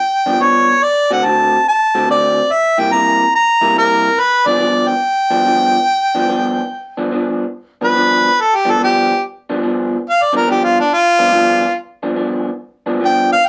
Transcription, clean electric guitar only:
0.26 0.38 G2 medium
0.26 0.39 F3 medium
0.26 0.39 B3 medium
0.26 0.40 D4 medium
0.39 0.72 G2 medium
0.39 0.72 F3 medium
0.39 0.72 B3 medium
0.39 0.73 D4 medium
1.11 1.23 D3 medium
1.11 1.23 A3 medium
1.11 1.23 C4 medium
1.11 1.24 F#4 medium
1.24 1.56 D3 medium
1.24 1.57 A3 medium
1.24 1.57 C4 medium
1.24 1.57 F#4 medium
1.95 2.07 D3 medium
1.95 2.08 A3 medium
1.95 2.08 C4 medium
1.95 2.08 F#4 medium
2.08 2.41 D3 medium
2.08 2.41 A3 medium
2.08 2.41 C4 medium
2.08 2.41 F#4 medium
2.78 2.90 C3 medium
2.78 2.91 G3 medium
2.78 2.91 A#3 medium
2.78 2.92 E4 medium
2.92 3.24 C3 medium
2.92 3.24 G3 medium
2.92 3.24 A#3 medium
2.92 3.25 E4 medium
3.61 3.74 C3 medium
3.61 3.75 G3 medium
3.61 3.75 A#3 medium
3.61 3.75 E4 medium
3.75 4.08 C3 medium
3.75 4.08 G3 medium
3.75 4.08 A#3 medium
3.75 4.08 E4 medium
4.46 4.58 G2 medium
4.46 4.59 F3 medium
4.46 4.59 B3 medium
4.46 4.59 D4 medium
4.59 4.92 G2 medium
4.59 4.92 F3 medium
4.59 4.92 B3 medium
4.59 4.93 D4 medium
5.30 5.43 G2 medium
5.30 5.44 F3 medium
5.30 5.44 B3 medium
5.30 5.44 D4 medium
5.44 5.76 G2 medium
5.44 5.77 F3 medium
5.44 5.77 B3 medium
5.44 5.77 D4 medium
6.15 6.26 G2 medium
6.15 6.27 F3 medium
6.15 6.27 B3 medium
6.15 6.28 D4 medium
6.27 6.60 G2 medium
6.27 6.60 F3 medium
6.27 6.61 B3 medium
6.27 6.61 D4 medium
6.97 7.10 G2 medium
6.97 7.11 F3 medium
6.97 7.11 B3 medium
6.97 7.12 D4 medium
7.12 7.44 G2 medium
7.12 7.44 F3 medium
7.12 7.45 B3 medium
7.12 7.45 D4 medium
7.81 7.94 G2 medium
7.81 7.94 F3 medium
7.81 7.94 B3 medium
7.81 7.95 D4 medium
7.95 8.28 G2 medium
7.95 8.28 F3 medium
7.95 8.28 B3 medium
7.95 8.29 D4 medium
8.65 8.78 G2 medium
8.65 8.78 F3 medium
8.65 8.78 B3 medium
8.65 8.79 D4 medium
8.79 9.12 G2 medium
8.79 9.12 F3 medium
8.79 9.12 B3 medium
8.79 9.13 D4 medium
9.50 9.62 G2 medium
9.50 9.62 F3 medium
9.50 9.62 B3 medium
9.50 9.63 D4 medium
9.63 9.96 G2 medium
9.63 9.96 F3 medium
9.63 9.96 B3 medium
9.63 9.97 D4 medium
10.33 10.46 G2 medium
10.33 10.47 F3 medium
10.33 10.47 B3 medium
10.33 10.48 D4 medium
10.48 10.81 G2 medium
10.48 10.81 F3 medium
10.48 10.81 B3 medium
10.48 10.81 D4 medium
11.19 11.31 G2 medium
11.19 11.31 F3 medium
11.19 11.31 B3 medium
11.19 11.31 D4 medium
11.32 11.65 G2 medium
11.32 11.65 F3 medium
11.32 11.65 B3 medium
11.32 11.65 D4 medium
12.03 12.14 G2 medium
12.03 12.15 F3 medium
12.03 12.15 B3 medium
12.03 12.16 D4 medium
12.16 12.49 G2 medium
12.16 12.49 F3 medium
12.16 12.49 B3 medium
12.16 12.49 D4 medium
12.86 12.99 G2 medium
12.86 12.99 F3 medium
12.86 13.00 B3 medium
12.86 13.00 D4 medium
13.00 13.33 G2 medium
13.00 13.33 F3 medium
13.00 13.34 B3 medium
13.00 13.34 D4 medium

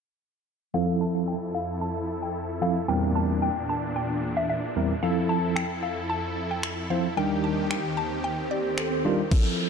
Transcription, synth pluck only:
0.74 0.96 F5 loud
1.01 1.22 A5 medium
1.28 1.49 G5 medium
1.55 1.66 F5 medium
1.81 1.93 A5 medium
2.22 2.32 G5 medium
2.62 2.73 F5 medium
2.88 3.10 G5 medium
3.15 3.37 A5 medium
3.42 3.64 G5 medium
3.69 3.81 A5 medium
3.96 4.07 G5 medium
4.37 4.47 E5 medium
4.49 4.88 E5 medium
5.03 5.24 F5 medium
5.29 5.51 A5 medium
5.56 5.77 G5 medium
5.83 5.94 F5 medium
6.10 6.21 A5 medium
6.51 6.61 G5 medium
6.90 7.02 F5 medium
7.17 7.39 G5 loud
7.44 7.65 A5 medium
7.71 7.92 G5 medium
7.97 8.09 A5 medium
8.24 8.46 G5 medium
8.51 8.62 D5 medium

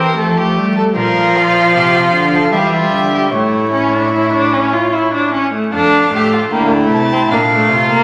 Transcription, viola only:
0.00 0.16 C4 medium
0.17 0.94 A3 medium
0.96 2.50 F3 loud
2.53 3.31 G3 medium
3.34 3.73 A3 medium
3.74 3.95 C#4 medium
3.93 4.12 D4 medium
4.12 4.32 E4 medium
4.33 4.54 D4 medium
4.53 4.74 C#4 medium
4.73 4.95 F4 medium
4.93 5.13 E4 medium
5.14 5.33 D4 medium
5.34 5.53 C#4 medium
5.54 5.73 A3 medium
5.74 6.10 D4 loud
6.13 6.52 A3 medium
6.53 6.74 A#3 medium
6.72 7.11 A3 medium
7.12 7.20 C4 medium
7.32 7.40 A#3 medium
7.52 7.90 A3 medium
7.90 8.04 A#3 loud

